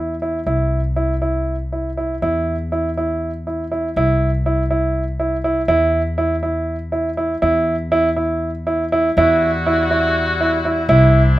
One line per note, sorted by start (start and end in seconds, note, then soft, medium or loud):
0.00 0.44 E2 medium
0.00 0.14 E4 soft
0.22 0.38 E4 medium
0.46 2.19 C2 medium
0.46 0.79 E4 medium
0.96 1.13 E4 medium
1.22 1.55 E4 medium
1.72 1.89 E4 soft
1.97 2.14 E4 medium
2.22 3.93 E2 medium
2.22 2.55 E4 medium
2.72 2.88 E4 medium
2.97 3.30 E4 medium
3.47 3.63 E4 medium
3.72 3.88 E4 medium
3.96 5.65 C2 medium
3.96 4.29 E4 medium
4.46 4.62 E4 medium
4.71 5.03 E4 medium
5.20 5.36 E4 medium
5.44 5.60 E4 medium
5.68 7.38 E2 medium
5.68 6.01 E4 medium
6.18 6.34 E4 medium
6.43 6.75 E4 medium
6.92 7.09 E4 medium
7.17 7.34 E4 medium
7.42 9.13 E2 medium
7.42 7.75 E4 medium
7.92 8.08 E4 medium
8.16 8.49 E4 medium
8.67 8.83 E4 medium
8.92 9.09 E4 medium
9.17 10.86 E2 medium
9.17 10.88 G3 medium
9.17 9.50 E4 medium
9.17 11.39 E4 medium
9.17 10.88 F#4 medium
9.66 9.83 E4 medium
9.91 10.23 E4 medium
10.41 10.56 E4 medium
10.65 10.81 E4 medium
10.89 11.39 C2 medium
10.89 11.39 C4 medium
10.89 11.39 D4 medium
10.89 11.21 E4 medium